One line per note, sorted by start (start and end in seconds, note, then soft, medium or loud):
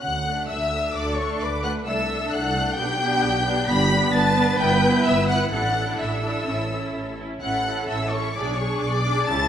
0.01 0.44 D2 medium
0.01 0.46 F#5 loud
0.01 0.45 F#6 loud
0.27 0.71 A3 medium
0.27 0.71 D4 medium
0.48 0.90 D2 medium
0.48 0.94 E5 loud
0.48 0.94 E6 loud
0.72 1.17 A3 medium
0.72 1.17 D4 medium
0.94 1.35 D2 loud
0.94 1.38 A4 medium
0.94 1.18 D5 loud
0.94 1.18 D6 loud
1.16 1.62 A3 medium
1.16 1.62 D4 medium
1.16 1.40 C#5 loud
1.16 1.41 C#6 loud
1.40 1.81 D2 medium
1.40 1.86 B4 loud
1.40 1.48 D5 loud
1.40 1.64 D6 loud
1.63 1.85 A3 medium
1.63 1.84 D4 medium
1.63 1.71 F#5 medium
1.63 1.72 F#6 loud
1.85 2.26 C2 medium
1.85 2.07 A3 medium
1.85 2.07 D4 medium
1.85 2.76 A4 medium
1.85 2.30 E5 medium
1.85 2.30 E6 loud
2.08 2.53 A3 medium
2.08 2.53 D4 medium
2.31 2.72 C2 loud
2.31 2.77 F#5 loud
2.31 2.77 F#6 loud
2.54 2.77 A3 medium
2.54 2.75 D4 medium
2.76 3.17 B1 loud
2.76 2.99 B3 medium
2.76 2.99 D4 medium
2.76 3.66 G4 loud
2.76 3.67 G5 loud
2.76 3.65 G6 loud
3.00 3.43 B3 medium
3.00 3.43 D4 loud
3.22 3.62 B1 loud
3.44 3.66 B3 medium
3.44 3.65 D4 medium
3.67 4.08 G1 loud
3.67 3.89 B3 medium
3.67 3.89 D4 medium
3.67 4.13 G4 loud
3.67 4.12 B5 loud
3.67 4.13 B6 loud
3.90 4.35 B3 loud
3.90 4.34 D4 medium
4.12 4.53 G1 loud
4.12 5.49 B4 loud
4.12 4.59 A5 loud
4.12 4.59 A6 loud
4.36 4.58 B3 medium
4.36 4.59 D4 medium
4.59 5.00 G1 loud
4.59 4.82 B3 medium
4.59 4.82 E4 loud
4.59 5.04 G5 loud
4.59 5.05 G6 loud
4.83 5.28 B3 medium
4.83 5.28 E4 medium
5.05 5.46 G1 loud
5.05 5.28 E5 loud
5.05 5.29 E6 loud
5.28 5.52 B3 medium
5.28 5.51 E4 medium
5.28 5.50 F#5 loud
5.28 5.50 F#6 loud
5.51 5.93 A1 loud
5.51 5.75 D4 medium
5.51 5.75 E4 medium
5.51 7.15 A4 medium
5.51 5.98 F#5 loud
5.51 5.98 F#6 loud
5.76 6.22 D4 medium
5.76 6.22 E4 medium
5.98 6.41 A1 medium
5.98 7.16 E5 medium
5.98 7.19 E6 loud
6.23 6.46 D4 medium
6.23 6.45 E4 medium
6.45 6.88 A1 medium
6.45 6.69 C#4 medium
6.45 6.69 E4 medium
6.70 7.17 C#4 medium
6.70 7.17 E4 medium
6.93 7.36 A1 medium
7.18 7.40 C#4 medium
7.18 7.40 E4 medium
7.41 7.84 A1 medium
7.41 7.64 C#4 medium
7.41 7.64 E4 medium
7.41 8.32 A4 medium
7.41 7.86 F#5 loud
7.41 7.87 F#6 loud
7.65 8.11 C#4 medium
7.65 8.11 E4 medium
7.88 8.30 A1 medium
7.88 8.12 E5 medium
7.88 8.13 E6 loud
8.11 8.36 C#4 medium
8.11 8.36 E4 medium
8.11 8.35 C#5 loud
8.11 8.37 C#6 loud
8.35 8.77 B1 medium
8.35 8.58 D4 medium
8.35 8.58 G#4 medium
8.35 9.48 G#4 medium
8.35 8.58 D5 medium
8.35 8.59 D6 loud
8.57 9.04 D4 medium
8.57 9.04 G#4 medium
8.57 8.81 C#5 medium
8.57 8.82 C#6 loud
8.81 9.23 B1 loud
8.81 9.26 D5 loud
8.81 8.89 D6 loud
8.88 8.96 C#6 medium
8.96 9.28 D6 loud
9.05 9.27 D4 medium
9.05 9.28 G#4 medium
9.26 9.48 C#2 medium
9.26 9.48 C#4 medium
9.26 9.48 E4 medium
9.26 9.48 A5 loud
9.26 9.48 A6 loud